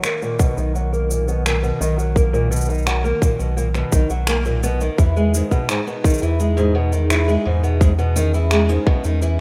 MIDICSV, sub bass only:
0, 0, Header, 1, 2, 480
1, 0, Start_track
1, 0, Key_signature, 5, "major"
1, 0, Tempo, 705882
1, 1469, Time_signature, 4, 2, 24, 8
1, 6393, End_track
2, 0, Start_track
2, 0, Title_t, "Sub bass"
2, 0, Program_c, 0, 38
2, 391, Note_on_c, 0, 35, 90
2, 1173, Note_off_c, 0, 35, 0
2, 1228, Note_on_c, 0, 35, 96
2, 2131, Note_off_c, 0, 35, 0
2, 2309, Note_on_c, 0, 35, 91
2, 2612, Note_off_c, 0, 35, 0
2, 2669, Note_on_c, 0, 35, 98
2, 2754, Note_off_c, 0, 35, 0
2, 2786, Note_on_c, 0, 35, 84
2, 3331, Note_off_c, 0, 35, 0
2, 3390, Note_on_c, 0, 40, 93
2, 3693, Note_off_c, 0, 40, 0
2, 4234, Note_on_c, 0, 40, 91
2, 5015, Note_off_c, 0, 40, 0
2, 5074, Note_on_c, 0, 40, 104
2, 5975, Note_off_c, 0, 40, 0
2, 6153, Note_on_c, 0, 40, 91
2, 6393, Note_off_c, 0, 40, 0
2, 6393, End_track
0, 0, End_of_file